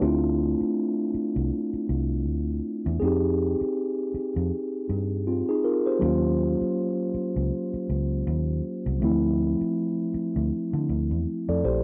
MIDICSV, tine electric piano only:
0, 0, Header, 1, 2, 480
1, 0, Start_track
1, 0, Key_signature, -1, "minor"
1, 0, Tempo, 750000
1, 10, Time_signature, 4, 2, 24, 8
1, 7575, End_track
2, 0, Start_track
2, 0, Title_t, "Tine electric piano"
2, 0, Program_c, 0, 4
2, 0, Control_c, 0, 64, 127
2, 0, Note_on_c, 0, 57, 78
2, 0, Note_on_c, 0, 62, 66
2, 8, Note_on_c, 0, 60, 71
2, 18, Control_c, 0, 64, 0
2, 18, Note_on_c, 0, 64, 70
2, 30, Note_on_c, 0, 65, 91
2, 123, Control_c, 0, 64, 127
2, 139, Note_off_c, 0, 62, 0
2, 1898, Note_off_c, 0, 57, 0
2, 1903, Note_off_c, 0, 60, 0
2, 1908, Note_off_c, 0, 64, 0
2, 1914, Note_off_c, 0, 65, 0
2, 1918, Note_on_c, 0, 68, 76
2, 1928, Note_on_c, 0, 60, 72
2, 1938, Control_c, 0, 64, 0
2, 1939, Note_on_c, 0, 63, 69
2, 1951, Note_on_c, 0, 67, 85
2, 2032, Control_c, 0, 64, 127
2, 3105, Note_off_c, 0, 60, 0
2, 3111, Note_off_c, 0, 63, 0
2, 3117, Note_off_c, 0, 67, 0
2, 3374, Note_on_c, 0, 65, 69
2, 3378, Note_on_c, 0, 60, 58
2, 3504, Note_off_c, 0, 65, 0
2, 3504, Note_off_c, 0, 68, 0
2, 3506, Note_off_c, 0, 60, 0
2, 3512, Note_on_c, 0, 68, 74
2, 3515, Note_on_c, 0, 63, 64
2, 3606, Note_off_c, 0, 68, 0
2, 3608, Note_off_c, 0, 63, 0
2, 3612, Note_on_c, 0, 70, 72
2, 3617, Note_on_c, 0, 65, 63
2, 3743, Note_off_c, 0, 70, 0
2, 3746, Note_off_c, 0, 65, 0
2, 3753, Note_on_c, 0, 72, 71
2, 3757, Note_on_c, 0, 67, 58
2, 3835, Note_on_c, 0, 54, 80
2, 3846, Note_on_c, 0, 58, 69
2, 3857, Note_on_c, 0, 61, 72
2, 3858, Control_c, 0, 64, 0
2, 3868, Note_on_c, 0, 65, 84
2, 3961, Control_c, 0, 64, 127
2, 3979, Note_off_c, 0, 72, 0
2, 3981, Note_off_c, 0, 67, 0
2, 5737, Note_off_c, 0, 54, 0
2, 5742, Note_off_c, 0, 58, 0
2, 5748, Note_off_c, 0, 61, 0
2, 5753, Note_off_c, 0, 65, 0
2, 5758, Note_on_c, 0, 52, 64
2, 5769, Note_on_c, 0, 57, 71
2, 5777, Control_c, 0, 64, 0
2, 5779, Note_on_c, 0, 60, 73
2, 5791, Note_on_c, 0, 64, 90
2, 5800, Note_on_c, 0, 53, 77
2, 5812, Note_off_c, 0, 52, 0
2, 5886, Control_c, 0, 64, 127
2, 6956, Note_off_c, 0, 64, 0
2, 7353, Note_on_c, 0, 74, 67
2, 7356, Note_on_c, 0, 69, 59
2, 7447, Note_off_c, 0, 74, 0
2, 7448, Note_off_c, 0, 69, 0
2, 7453, Note_on_c, 0, 72, 73
2, 7458, Note_on_c, 0, 67, 62
2, 7575, Note_off_c, 0, 53, 0
2, 7575, Note_off_c, 0, 57, 0
2, 7575, Note_off_c, 0, 60, 0
2, 7575, Note_off_c, 0, 67, 0
2, 7575, Note_off_c, 0, 72, 0
2, 7575, End_track
0, 0, End_of_file